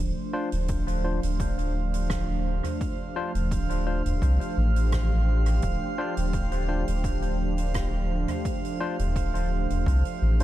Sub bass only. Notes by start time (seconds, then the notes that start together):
0.00 D1
0.52 D1
1.23 D1
3.35 D1
4.05 D1
4.22 C2
4.57 A1
5.63 D1
6.17 D1
6.88 D1
8.99 D1
9.70 D1
9.86 C2
10.22 A1